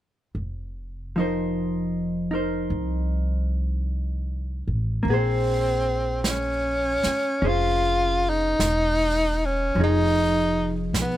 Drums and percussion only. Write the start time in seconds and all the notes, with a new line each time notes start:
5.06 brush sweep
6.24 brush sweep, snare, hi-hat pedal
7.03 snare
7.42 brush sweep
8.60 brush sweep, snare, hi-hat pedal
9.77 brush sweep
10.94 brush sweep, snare, hi-hat pedal